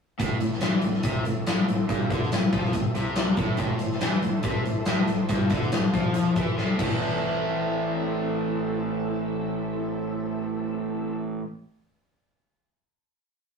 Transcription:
0.19 fingered electric bass A1, overdriven electric guitar A2, string machine C4 E4 A4 E5, kick, closed hi-hat
0.40 fingered electric bass A1, overdriven electric guitar A2, closed hi-hat
0.52 snare
0.61 fingered electric bass E2, overdriven electric guitar E3, snare, closed hi-hat, tambourine
0.82 fingered electric bass A1, overdriven electric guitar A2, closed hi-hat
0.93 snare
1.03 fingered electric bass C2, overdriven electric guitar C3, kick, closed hi-hat
1.25 fingered electric bass A1, overdriven electric guitar A2, closed hi-hat
1.46 fingered electric bass A1, overdriven electric guitar A2, snare, closed hi-hat, tambourine
1.68 fingered electric bass A1, overdriven electric guitar A2, closed hi-hat
1.89 fingered electric bass G1, overdriven electric guitar G2, kick, closed hi-hat
2.10 fingered electric bass D2, overdriven electric guitar D3, kick, closed hi-hat
2.23 snare
2.32 fingered electric bass A1, overdriven electric guitar A2, snare, closed hi-hat, tambourine
2.53 fingered electric bass F2, overdriven electric guitar F3, kick, closed hi-hat
2.65 snare
2.73 fingered electric bass A1, overdriven electric guitar A2, kick, closed hi-hat
2.94 fingered electric bass C2, overdriven electric guitar C3, closed hi-hat
3.16 snare, closed hi-hat, tambourine
3.37 fingered electric bass A1, overdriven electric guitar A2, kick, closed hi-hat
3.57 fingered electric bass A1, overdriven electric guitar A2, string machine E4 A4 C5 E5, kick, closed hi-hat
3.79 fingered electric bass A1, overdriven electric guitar A2, closed hi-hat
3.91 snare
4.01 fingered electric bass E2, overdriven electric guitar E3, snare, closed hi-hat, tambourine
4.22 fingered electric bass A1, overdriven electric guitar A2, closed hi-hat
4.43 fingered electric bass C2, overdriven electric guitar C3, kick, closed hi-hat
4.65 fingered electric bass A1, overdriven electric guitar A2, closed hi-hat
4.86 fingered electric bass A1, overdriven electric guitar A2, snare, closed hi-hat, tambourine
5.08 fingered electric bass A1, overdriven electric guitar A2, closed hi-hat
5.29 fingered electric bass G1, overdriven electric guitar G2, kick, closed hi-hat
5.50 fingered electric bass D2, overdriven electric guitar D3, kick, closed hi-hat
5.62 snare
5.72 fingered electric bass A1, overdriven electric guitar A2, snare, closed hi-hat, tambourine
5.94 fingered electric bass F2, overdriven electric guitar F3, kick, closed hi-hat
6.14 closed hi-hat
6.36 fingered electric bass E2, overdriven electric guitar E3, kick, closed hi-hat
6.57 fingered electric bass A1, overdriven electric guitar A2, snare
6.78 fingered electric bass A1, overdriven electric guitar A2 E3 A3, string machine C4 E4 A4 E5, kick, crash

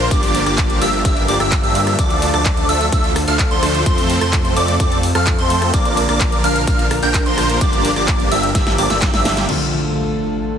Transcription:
Already playing: analog synth pad D3 F4
0.11 detuned saw bass G1, supersaw synth F3 A#3 D4 G4 D5, analog synth pad G3 A#4, digital synth lead D6, kick, closed hi-hat
0.23 open hi-hat
0.35 open hi-hat
0.46 detuned saw bass G1, supersaw synth F3 A#3 D4 G4 D5, digital synth lead D6, cross-stick, closed hi-hat
0.58 kick, clap, closed hi-hat
0.70 closed hi-hat
0.81 detuned saw bass G1, supersaw synth F3 A#3 D4 G4 E5, digital synth lead E6, open hi-hat
0.93 closed hi-hat
1.05 detuned saw bass G1, supersaw synth F3 A#3 D4 G4 E5, digital synth lead E6, kick, closed hi-hat
1.17 closed hi-hat
1.28 detuned saw bass G1, supersaw synth F3 A#3 D4 G4 D5, digital synth lead D6, open hi-hat
1.40 detuned saw bass G1, supersaw synth F3 A#3 D4 G4 E5, digital synth lead E6, cross-stick, closed hi-hat
1.52 kick, clap, closed hi-hat
1.64 detuned saw bass G2, supersaw synth F3 A#3 D4 G4 E5, digital synth lead E6, closed hi-hat
1.75 open hi-hat
1.87 cross-stick, closed hi-hat
1.99 detuned saw bass D2, supersaw synth F3 A3 D4 A4, analog synth pad A3 A4, digital synth lead D6, kick, closed hi-hat
2.10 closed hi-hat
2.22 open hi-hat
2.34 detuned saw bass D2, supersaw synth F3 A3 D4 A4 D5, digital synth lead D6, cross-stick, closed hi-hat
2.46 kick, clap, closed hi-hat
2.57 closed hi-hat
2.69 detuned saw bass D2, supersaw synth F3 A3 D4 A4 E5, digital synth lead E6, open hi-hat
2.81 closed hi-hat
2.92 detuned saw bass D2, supersaw synth F3 A3 D4 A4 E5, digital synth lead E6, kick, closed hi-hat
3.04 closed hi-hat
3.16 cross-stick, open hi-hat
3.28 detuned saw bass D2, supersaw synth F3 A3 D4 A4 F5, digital synth lead F6, closed hi-hat
3.39 kick, clap, closed hi-hat
3.51 detuned saw bass D2, supersaw synth F3 A3 D4 A4 C5, digital synth lead C6, closed hi-hat
3.63 cross-stick, open hi-hat
3.75 closed hi-hat
3.86 detuned saw bass F2, analog synth pad C3, supersaw synth F3 A3 C4 A4 C5, digital synth lead C6, kick, closed hi-hat
3.98 open hi-hat
4.10 open hi-hat
4.21 detuned saw bass F2, supersaw synth F3 A3 C4 A4 C5, digital synth lead C6, cross-stick, closed hi-hat
4.33 kick, clap, closed hi-hat
4.45 closed hi-hat
4.56 detuned saw bass F2, supersaw synth F3 A3 C4 A4 D5, digital synth lead D6, open hi-hat
4.68 closed hi-hat
4.80 detuned saw bass F2, supersaw synth F3 A3 C4 A4 D5, digital synth lead D6, kick, closed hi-hat
4.92 closed hi-hat
5.03 open hi-hat
5.15 detuned saw bass F2, supersaw synth F3 A3 C4 A4 F5, digital synth lead F6, cross-stick, closed hi-hat
5.27 kick, clap, closed hi-hat
5.39 detuned saw bass F2, supersaw synth F3 A3 C4 A4 C5, digital synth lead C6, closed hi-hat
5.50 open hi-hat
5.62 cross-stick, closed hi-hat
5.74 detuned saw bass A#1, analog synth pad D3 A#3 F4 A#4, supersaw synth F3 A#3 D4 A#4 D5, digital synth lead D6, kick, closed hi-hat
5.85 closed hi-hat
5.97 open hi-hat
6.09 detuned saw bass A#1, supersaw synth F3 A#3 D4 A#4 D5, digital synth lead D6, cross-stick, closed hi-hat
6.21 kick, clap, closed hi-hat
6.32 closed hi-hat
6.44 detuned saw bass A#1, supersaw synth F3 A#3 D4 A#4 F5, digital synth lead F6, open hi-hat
6.56 closed hi-hat
6.67 detuned saw bass A#1, supersaw synth F3 A#3 D4 A#4 F5, digital synth lead F6, kick, closed hi-hat
6.79 closed hi-hat
6.91 cross-stick, open hi-hat
7.03 detuned saw bass A#1, supersaw synth F3 A#3 D4 A#4 G5, digital synth lead G6, closed hi-hat
7.14 kick, clap, closed hi-hat
7.26 detuned saw bass A#1, supersaw synth F3 A#3 D4 A#4 C5, digital synth lead C6, closed hi-hat
7.38 cross-stick, open hi-hat
7.50 closed hi-hat
7.61 detuned saw bass G1, supersaw synth F3 A#3 D4 G4 D5, analog synth pad G3, digital synth lead D6, kick, closed hi-hat
7.73 closed hi-hat
7.85 open hi-hat
7.96 detuned saw bass G1, supersaw synth F3 A#3 D4 G4 D5, digital synth lead D6, cross-stick, closed hi-hat
8.08 kick, clap, closed hi-hat
8.20 closed hi-hat
8.31 detuned saw bass G1, supersaw synth F3 A#3 D4 G4 E5, digital synth lead E6, open hi-hat
8.43 closed hi-hat
8.55 detuned saw bass G1, supersaw synth F3 A#3 D4 G4 E5, digital synth lead E6, kick, snare, closed hi-hat
8.67 snare, closed hi-hat
8.78 detuned saw bass G1, supersaw synth F3 A#3 D4 G4 D5, digital synth lead D6, open hi-hat
8.90 detuned saw bass G1, supersaw synth F3 A#3 D4 G4 E5, digital synth lead E6, snare, closed hi-hat
9.02 kick, snare, clap, closed hi-hat
9.13 detuned saw bass G1, supersaw synth F3 A#3 D4 G4 E5, digital synth lead E6, snare, closed hi-hat
9.25 snare, open hi-hat
9.37 snare, closed hi-hat
9.47 grand piano D3 F3 A3 F4, analog synth pad D3 A3 F4 A4, crash, impact

